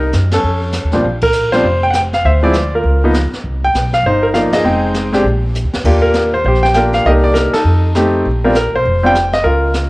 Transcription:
Already playing: upright bass C2, grand piano D#4 A#4
0.13 upright bass F#2, snare, hi-hat pedal
0.31 grand piano C#4 A4, snare, ride
0.43 upright bass F2, brush sweep
0.72 snare, hi-hat pedal
0.84 upright bass D#2
0.91 upright bass B1, grand piano A#2 F3 G3 C4 D4, snare
1.03 upright bass A#1, brush sweep
1.21 grand piano A#4, kick, ride
1.33 hi-hat pedal
1.52 grand piano F3 G3 C4 D4 C5, snare
1.63 upright bass F1, brush sweep
1.83 grand piano G5
1.90 grand piano F#5, snare, hi-hat pedal
1.95 grand piano G5
2.13 grand piano F5, snare
2.24 upright bass D2, grand piano C5 E5, brush sweep
2.43 grand piano F3 G#3 C4 E4 D5
2.53 snare, hi-hat pedal
2.75 grand piano F4 A#4
2.84 upright bass C#2, brush sweep
3.04 grand piano F3 A#3 B3 D#4
3.14 snare, hi-hat pedal
3.32 muted upright bass stroke, snare
3.44 upright bass C2, brush sweep
3.65 grand piano G5
3.74 upright bass B1, snare, hi-hat pedal
3.93 grand piano F5, snare
4.03 upright bass G1, grand piano D#4 C5, brush sweep
4.23 grand piano A#4
4.34 grand piano F3 A#3 D#4 D5 F5, snare, hi-hat pedal
4.52 grand piano G#4 D#5, muted upright bass stroke, snare, ride
4.64 upright bass F1, grand piano G#3 C4 D#4 G5, brush sweep
4.94 snare, hi-hat pedal
5.13 grand piano G#3 C4 D4 G4, snare
5.23 upright bass A#1, brush sweep
5.55 hi-hat pedal
5.63 upright bass D2
5.74 upright bass E2, snare
5.84 upright bass D#2, grand piano A#3 D4 F4 G4, brush sweep, kick, crash
6.02 grand piano A#4
6.13 snare, hi-hat pedal
6.34 grand piano C5
6.44 upright bass A#1, grand piano G4 C5, brush sweep
6.55 snare
6.63 grand piano G5, snare
6.74 grand piano A#3 D4 F4 A#4 G5, snare, hi-hat pedal
6.93 grand piano F5, snare
7.05 upright bass C2, grand piano A#3 D4 D#4 G4 A#4 D#5, brush sweep
7.24 grand piano D5
7.34 grand piano A#4, snare, hi-hat pedal
7.53 grand piano D#4 A4, muted upright bass stroke, snare, ride
7.64 upright bass F2, brush sweep
7.95 grand piano A3 C4 D#4 G4, snare, hi-hat pedal
8.25 upright bass A#1, brush sweep
8.45 grand piano G3 C4 D4 F4 A#4
8.55 grand piano A#4, snare, hi-hat pedal
8.74 upright bass B1, grand piano C5
8.85 upright bass F1, brush sweep
9.03 grand piano G3 C4 D4 F4 G5
9.15 snare, hi-hat pedal
9.33 grand piano D#5, snare
9.44 upright bass C#2, grand piano F4 A#4, brush sweep
9.74 snare, hi-hat pedal

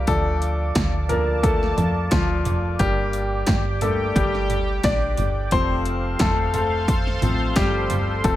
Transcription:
Already playing: grand piano A#3 A#4 D5, analog synth pad D5 F5 D6
0.07 analog synth bass D2, grand piano F3 A3 D4 A4, analog synth pad A5, kick, closed hi-hat
0.42 closed hi-hat
0.75 analog synth bass D2, kick, snare, closed hi-hat
1.09 grand piano F3 A#3 D4 A4 A#4, closed hi-hat, floor tom
1.43 grand piano A3 A4, kick, closed hi-hat
1.63 snare
1.77 analog synth bass F2, closed hi-hat, floor tom
2.11 analog synth bass D2, grand piano F3 F4, kick, snare, closed hi-hat
2.45 analog synth bass F1, closed hi-hat, floor tom
2.79 analog synth bass G1, grand piano G3 A#3 D4 G4, analog synth pad G4 G5, kick, closed hi-hat
3.13 closed hi-hat
3.47 analog synth bass G1, kick, snare, closed hi-hat
3.81 grand piano G3 A3 A#3 D4 A4, closed hi-hat, floor tom
4.16 analog synth bass G1, grand piano G3 G4, kick, closed hi-hat
4.35 snare
4.49 closed hi-hat, floor tom
4.83 analog synth bass A#1, grand piano D4 D5, kick, snare, closed hi-hat
5.17 analog synth bass G1, closed hi-hat, floor tom
5.51 analog synth bass F1, grand piano F3 A3 C4 C5, analog synth pad A4 C5 F5 C6, kick, closed hi-hat
5.85 closed hi-hat
6.19 analog synth bass F1, grand piano A3 A4, kick, snare, closed hi-hat
6.54 grand piano A3 A4, closed hi-hat, floor tom
6.88 kick, closed hi-hat
7.07 snare
7.22 analog synth bass A1, grand piano F3 A3 C4, closed hi-hat, floor tom
7.56 analog synth bass G1, grand piano G3 G4, kick, snare, closed hi-hat
7.90 analog synth bass G1, closed hi-hat, floor tom
8.24 analog synth bass F1, grand piano F3 A3 C4 A4, analog synth pad D#5, kick, closed hi-hat

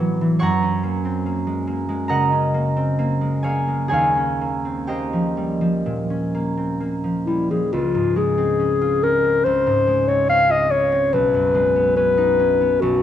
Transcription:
Already playing: harp A2 E3 A3 B3 D5 E5 G5 A5 B5 C6 D6 E6
0.00 harp F#3
0.21 harp E3
0.39 harp F#2 C#5 F#5 A#5 C#6
0.62 harp C#4
0.83 harp A#3
1.05 harp C4
1.26 harp A#3
1.47 harp G#3
1.67 harp A#3
1.89 harp G#3
2.08 harp C#3 A#4 D#5 F#5 A#5
2.32 harp C#4
2.54 harp A#3
2.77 harp C4
2.99 harp A#3
3.21 harp G#3
3.43 harp A#3 G#4 C#5 F5 G#5
3.68 harp G#3
3.88 harp D#2 G#4 C#5 G#5
3.93 harp F5
4.17 harp C#4
4.41 harp A#3
4.65 harp C4
4.87 harp A#3 G4 C5 D#5 G5
5.13 harp F3
5.37 harp G3
5.61 harp F3
5.86 harp A#2
6.10 harp C#4
6.34 harp A#3
6.57 harp C4
6.80 harp A#3
7.04 harp F3
7.26 harp G3, clarinet E4
7.51 harp F3, clarinet G#4
7.73 harp C#2, clarinet F4
7.95 harp G#2
8.16 harp G#3, clarinet G#4
8.38 harp C4
8.60 harp C#4
8.81 harp F4
9.03 harp C#4, clarinet A#4
9.24 harp C4
9.45 harp C#2, clarinet C5
9.67 harp G#2
9.87 harp G#3
10.08 harp C4, clarinet C#5
10.29 harp C#4, clarinet F5
10.49 harp F4, clarinet D#5
10.71 harp C#4, clarinet C#5
10.92 harp C4
11.13 harp B1, clarinet B4
11.34 harp F#2
11.55 harp G#3
11.76 harp B3
11.96 harp C#4, clarinet B4
12.18 harp D#4
12.40 harp C#4
12.61 harp B3
12.81 harp B1, clarinet F#4

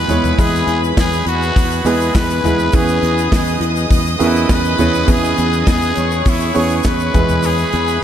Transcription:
Already playing: grand piano E3 G#3 B3 E4 G#4 B4, trumpet B4, violin section B4 B5
0.08 fingered electric bass E2, grand piano G#3 B3 E4 G#4 C#5, floor tom, hi-hat pedal, open hi-hat, shaker
0.24 floor tom, shaker
0.38 fingered electric bass E2, grand piano E3 G#3 B3 E4 G#4 B4, trumpet G#4, kick, hi-hat pedal, open hi-hat, shaker
0.55 shaker
0.67 fingered electric bass E2, hi-hat pedal, open hi-hat
0.84 shaker
0.97 fingered electric bass E2, trumpet G#4, kick, snare, clap, hi-hat pedal, open hi-hat, shaker
1.13 shaker
1.26 fingered electric bass E2, trumpet F#4, hi-hat pedal, open hi-hat
1.42 shaker
1.56 fingered electric bass E2, kick, hi-hat pedal, open hi-hat, shaker
1.71 shaker
1.85 fingered electric bass E2, grand piano G#3 B3 E4 G#4 B4, trumpet G#4, hi-hat pedal, open hi-hat, shaker
2.00 shaker
2.15 fingered electric bass E2, trumpet B4, kick, snare, clap, hi-hat pedal, open hi-hat, shaker
2.30 shaker
2.44 fingered electric bass E2, grand piano G#3 B3 E4 G#4 B4, floor tom, hi-hat pedal, open hi-hat, shaker
2.59 shaker
2.72 fingered electric bass E2, grand piano E3 B3 C#4 E4 G#4 B4, trumpet G#4, violin section D#5 D#6, kick, hi-hat pedal, open hi-hat, shaker
2.88 shaker
3.03 fingered electric bass E2, hi-hat pedal, open hi-hat
3.18 shaker
3.32 fingered electric bass E2, trumpet G#4, kick, snare, clap, hi-hat pedal, open hi-hat, shaker
3.47 shaker
3.60 fingered electric bass E2, hi-hat pedal, open hi-hat
3.76 shaker
3.90 fingered electric bass E2, kick, hi-hat pedal, open hi-hat, shaker
4.06 shaker
4.19 fingered electric bass E2, grand piano B3 C#4 E4 G#4 A#4, trumpet E4, hi-hat pedal, open hi-hat, shaker
4.27 grand piano B4
4.36 shaker
4.49 fingered electric bass E2, trumpet B4, kick, snare, clap, hi-hat pedal, open hi-hat, shaker
4.65 shaker
4.78 fingered electric bass E2, grand piano B3 C#4 E4 G#4 C#5, floor tom, hi-hat pedal, open hi-hat, shaker
4.94 shaker
5.07 fingered electric bass E2, grand piano E3 B3 C#4 E4 G#4 B4, trumpet G#4, kick, hi-hat pedal, open hi-hat, shaker
5.24 shaker
5.37 fingered electric bass E2, hi-hat pedal, open hi-hat, shaker
5.53 shaker
5.67 fingered electric bass E2, trumpet G#4, kick, snare, clap, hi-hat pedal, open hi-hat, shaker
5.82 shaker
5.95 fingered electric bass E2, violin section C#5 C#6, hi-hat pedal, open hi-hat, shaker
6.11 shaker
6.25 fingered electric bass E2, trumpet E4, kick, hi-hat pedal, open hi-hat, shaker
6.40 shaker
6.54 fingered electric bass E2, grand piano B3 C#4 E4 G#4 C#5, hi-hat pedal, open hi-hat, shaker
6.58 trumpet G#4
6.69 shaker
6.83 fingered electric bass E2, trumpet B4, kick, snare, clap, hi-hat pedal, open hi-hat, shaker
6.99 shaker
7.14 fingered electric bass E2, grand piano E3 G#3 B3 E4 G#4 B4, violin section B4 B5, kick, floor tom, hi-hat pedal, open hi-hat, shaker
7.29 floor tom, shaker
7.43 trumpet G#4, hi-hat pedal, open hi-hat, shaker
7.58 shaker
7.73 fingered electric bass E2, hi-hat pedal, open hi-hat
7.88 shaker

